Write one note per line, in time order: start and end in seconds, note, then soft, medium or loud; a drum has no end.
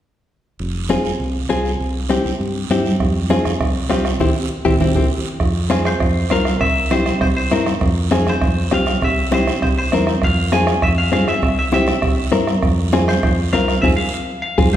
0.59 0.96 F1 medium
0.59 long guiro medium
0.75 high conga soft
0.89 1.11 C4 medium
0.89 1.11 F4 medium
0.89 1.11 G#4 medium
0.89 high conga medium
0.89 short guiro medium
1.05 1.11 F1 medium
1.05 short guiro medium
1.20 1.44 C2 medium
1.20 high conga soft
1.20 long guiro medium
1.49 1.74 C2 medium
1.49 1.71 C4 medium
1.49 1.71 F4 medium
1.49 1.71 G#4 medium
1.49 high conga medium
1.49 short guiro medium
1.65 short guiro medium
1.80 2.16 C2 medium
1.80 long guiro medium
1.95 high conga soft
2.10 2.31 C4 medium
2.10 2.31 E4 soft
2.10 2.31 G4 medium
2.10 high conga medium
2.10 short guiro medium
2.25 2.31 C2 medium
2.25 short guiro medium
2.40 2.64 G2 medium
2.40 high conga soft
2.40 long guiro medium
2.70 3.00 G2 medium
2.70 2.92 C4 medium
2.70 2.91 E4 medium
2.70 2.92 G4 medium
2.70 high conga medium
2.70 short guiro medium
2.84 high conga medium
2.84 short guiro medium
3.00 3.36 F2 medium
3.00 bombo low medium
3.00 bombo rim medium
3.00 long guiro medium
3.30 3.51 C4 medium
3.30 3.51 F4 medium
3.30 3.52 G#4 medium
3.30 bombo rim medium
3.30 high conga medium
3.30 short guiro medium
3.45 3.52 F2 medium
3.45 bombo rim medium
3.45 high conga medium
3.45 short guiro medium
3.60 3.85 C2 medium
3.60 bombo low medium
3.60 bombo rim medium
3.60 high conga soft
3.60 long guiro medium
3.90 4.14 C2 medium
3.90 4.11 C4 medium
3.90 4.11 F4 medium
3.90 4.11 G4 medium
3.90 bombo rim medium
3.90 high conga medium
3.90 short guiro medium
4.05 bombo rim medium
4.05 short guiro medium
4.20 4.32 C2 medium
4.20 4.30 C4 medium
4.20 4.30 E4 medium
4.20 4.30 G4 medium
4.20 bombo low medium
4.20 low conga medium
4.20 long guiro medium
4.65 4.77 C2 medium
4.65 4.75 C4 medium
4.65 4.75 E4 medium
4.65 4.75 G4 medium
4.65 bombo low medium
4.65 low conga medium
4.65 long guiro medium
4.80 4.92 C2 medium
4.80 4.90 C4 medium
4.80 4.90 E4 medium
4.80 4.90 G4 medium
4.80 bombo low medium
4.80 low conga medium
4.80 long guiro medium
4.95 5.07 C2 medium
4.95 5.06 C4 medium
4.95 5.05 E4 medium
4.95 5.05 G4 medium
4.95 bombo low medium
4.95 low conga medium
4.95 long guiro medium
5.40 5.89 F2 medium
5.40 bombo low medium
5.40 bombo rim medium
5.40 long guiro medium
5.55 high conga soft
5.70 5.92 C4 medium
5.70 5.92 F4 medium
5.70 5.92 G#4 medium
5.70 bombo rim medium
5.70 high conga medium
5.70 short guiro medium
5.85 6.33 C5 medium
5.85 bombo rim medium
5.85 short guiro medium
6.00 6.25 F2 medium
6.00 bombo low medium
6.00 bombo rim medium
6.00 high conga soft
6.00 long guiro medium
6.30 6.55 C2 medium
6.30 6.52 C4 medium
6.30 6.52 F4 medium
6.30 6.53 A#4 medium
6.30 6.60 F5 medium
6.30 bombo rim medium
6.30 high conga medium
6.30 short guiro medium
6.45 bombo rim medium
6.45 short guiro medium
6.61 7.09 C2 medium
6.61 6.89 E5 loud
6.61 bombo low medium
6.61 bombo rim medium
6.61 long guiro medium
6.76 high conga soft
6.91 7.13 C4 medium
6.91 7.13 E4 medium
6.91 7.13 G4 medium
6.91 7.19 C5 medium
6.91 bombo rim medium
6.91 high conga medium
6.91 short guiro medium
7.06 bombo rim medium
7.06 high conga medium
7.06 short guiro medium
7.21 7.45 C2 medium
7.21 7.26 C5 medium
7.21 bombo low medium
7.21 bombo rim medium
7.21 high conga soft
7.21 long guiro medium
7.37 7.65 C5 medium
7.51 7.76 G2 medium
7.51 7.73 C4 medium
7.51 7.73 E4 medium
7.51 7.73 A#4 medium
7.51 bombo rim medium
7.51 high conga medium
7.51 short guiro medium
7.66 bombo rim medium
7.66 high conga medium
7.66 short guiro medium
7.81 8.30 F2 medium
7.81 bombo low medium
7.81 bombo rim medium
7.81 long guiro medium
8.11 8.33 C4 medium
8.11 8.33 F4 medium
8.11 8.33 G#4 medium
8.11 bombo rim medium
8.11 high conga medium
8.11 short guiro medium
8.26 8.70 C5 medium
8.26 bombo rim medium
8.26 high conga medium
8.26 short guiro medium
8.41 8.66 F2 medium
8.41 bombo low medium
8.41 bombo rim medium
8.41 high conga soft
8.41 long guiro medium
8.71 8.96 C2 medium
8.71 8.93 C4 medium
8.71 8.93 F4 medium
8.71 8.93 G4 medium
8.71 9.04 F5 medium
8.71 bombo rim medium
8.71 high conga medium
8.71 short guiro medium
8.86 bombo rim medium
8.86 high conga medium
8.86 short guiro medium
9.02 9.50 C2 medium
9.02 9.33 E5 medium
9.02 bombo low medium
9.02 bombo rim medium
9.02 long guiro medium
9.17 high conga soft
9.32 9.53 C4 medium
9.32 9.53 E4 medium
9.32 9.53 G4 medium
9.32 9.61 C5 medium
9.32 bombo rim medium
9.32 high conga loud
9.32 short guiro medium
9.47 bombo rim medium
9.47 high conga medium
9.47 short guiro medium
9.62 9.87 C2 loud
9.62 9.68 C5 medium
9.62 bombo low medium
9.62 bombo rim medium
9.62 high conga soft
9.62 long guiro medium
9.78 10.06 C5 medium
9.92 10.17 E2 medium
9.92 10.14 C4 medium
9.92 10.14 E4 medium
9.92 10.14 A#4 medium
9.92 bombo rim medium
9.92 high conga medium
9.92 short guiro medium
10.07 bombo rim medium
10.07 short guiro medium
10.22 10.71 F2 medium
10.22 10.52 F5 medium
10.22 bombo low medium
10.22 bombo rim medium
10.22 long guiro medium
10.38 high conga soft
10.52 10.74 C4 medium
10.52 10.74 F4 medium
10.52 10.74 G#4 medium
10.52 10.81 G#5 medium
10.52 bombo rim medium
10.52 high conga medium
10.52 short guiro medium
10.67 bombo rim medium
10.67 short guiro medium
10.82 11.07 F2 medium
10.82 10.88 E5 medium
10.82 bombo low medium
10.82 bombo rim medium
10.82 high conga soft
10.82 long guiro medium
10.98 11.12 F5 medium
11.12 11.37 G2 medium
11.12 11.33 C4 medium
11.12 11.34 F4 medium
11.12 11.34 G#4 medium
11.12 11.27 F5 medium
11.12 bombo rim medium
11.12 high conga medium
11.12 short guiro medium
11.28 11.58 E5 medium
11.28 bombo rim medium
11.28 high conga medium
11.28 short guiro medium
11.42 11.91 C2 medium
11.42 bombo low medium
11.42 bombo rim medium
11.42 long guiro medium
11.58 11.64 E5 medium
11.58 high conga soft
11.72 11.94 C4 medium
11.72 11.94 E4 medium
11.72 11.94 G4 medium
11.72 12.30 E5 medium
11.72 bombo rim medium
11.72 high conga medium
11.72 short guiro medium
11.87 bombo rim medium
11.87 high conga medium
11.87 short guiro medium
12.02 12.27 C2 medium
12.02 bombo low medium
12.02 bombo rim medium
12.02 high conga soft
12.02 long guiro medium
12.32 12.57 G2 medium
12.32 12.54 C4 medium
12.32 12.54 E4 medium
12.32 12.54 A#4 medium
12.32 bombo rim medium
12.32 high conga medium
12.32 short guiro medium
12.47 bombo rim medium
12.47 short guiro medium
12.63 13.11 F2 medium
12.63 bombo low medium
12.63 bombo rim medium
12.63 long guiro medium
12.93 13.14 C4 medium
12.93 13.14 F4 medium
12.93 13.14 G#4 medium
12.93 bombo rim medium
12.93 high conga medium
12.93 short guiro medium
13.07 13.37 C5 medium
13.07 bombo rim medium
13.07 high conga medium
13.07 short guiro medium
13.23 13.47 F2 medium
13.23 bombo low medium
13.23 bombo rim medium
13.23 long guiro medium
13.52 13.77 C2 medium
13.52 13.74 C4 medium
13.52 13.75 F4 medium
13.52 13.75 A#4 medium
13.52 13.81 F5 medium
13.52 bombo rim medium
13.52 high conga medium
13.52 short guiro medium
13.68 bombo rim medium
13.68 short guiro medium
13.82 13.94 F2 medium
13.82 13.93 C4 medium
13.82 13.93 F4 medium
13.82 13.93 G#4 medium
13.82 13.87 E5 medium
13.82 bombo low medium
13.82 high conga medium
13.82 long guiro medium
13.97 14.39 F5 loud
14.42 14.71 F5 medium
14.58 14.70 F2 medium
14.58 14.68 C4 medium
14.58 14.68 F4 medium
14.58 14.68 G#4 medium
14.58 bombo low loud
14.58 high conga medium
14.58 long guiro medium
14.73 14.76 C5 medium
14.73 bombo low medium
14.73 high conga medium